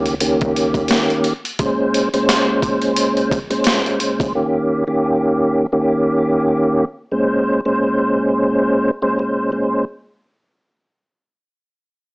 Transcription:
Already playing: C#2 D#3 A#3 C#4 G4
0.06 closed hi-hat
0.20 D#3 A#3 C#4 G4, closed hi-hat
0.41 kick, closed hi-hat
0.56 closed hi-hat
0.74 D#2, kick, closed hi-hat
0.88 snare, closed hi-hat
1.10 closed hi-hat
1.24 closed hi-hat
1.45 closed hi-hat
1.59 A#2 G#3 C#4 C5, kick, closed hi-hat
1.94 closed hi-hat
2.13 A#2 G#3 C#4 C5, closed hi-hat
2.29 snare, closed hi-hat
2.62 kick, closed hi-hat
2.82 closed hi-hat
2.96 closed hi-hat
3.17 closed hi-hat
3.31 kick, closed hi-hat
3.50 A#2 G#3 C#4 C5, closed hi-hat
3.64 A#2 G#3 C#4 C5, snare, closed hi-hat
3.86 closed hi-hat
4.00 A#2 G#3 C#4 C5, closed hi-hat
4.20 kick, closed hi-hat
4.35 D#3 A#3 C#4 G4
4.87 D#3 A#3 C#4 G4
5.72 D#3 A#3 C#4 G4
7.11 A#2 G#3 C#4 C5
7.65 A#2 G#3 C#4 C5
9.02 A#2 G#3 C#4 C5
9.19 A#2 G#3 C#4 C5
9.52 A#2 G#3 C#4 C5

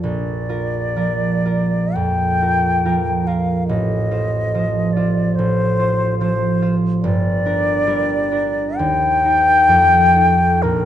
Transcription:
Already playing: F3 F4
0.01 A#1 D5
0.49 F4 A#4
0.96 F3 F4 A#4
1.45 F4 A#4
1.95 F2 G5
2.42 F4 A#4
2.85 F3 F4 A#4
3.27 F4 A#4 F5
3.68 A1 D#5
4.11 F4 C5
4.54 F3 F4 C5
4.93 F4 D5
4.97 C5
5.36 A1 C5
5.79 F4 C5
6.19 F3 F4 C5
6.62 F4 C5
7.02 G1 D5
7.46 D4 A#4
7.87 G3 D4 A#4
8.31 D4 A#4
8.77 D#2 G5
9.25 D#4 A#4
9.68 F2
10.15 D#4 A4
10.62 A#1 A#4

